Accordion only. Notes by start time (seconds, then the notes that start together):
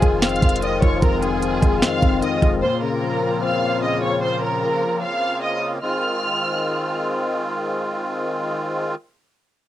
Already playing: D#3 G#3 C4 F4
2.62 C#3 A#3
5.82 D#3 G#3 C4 F4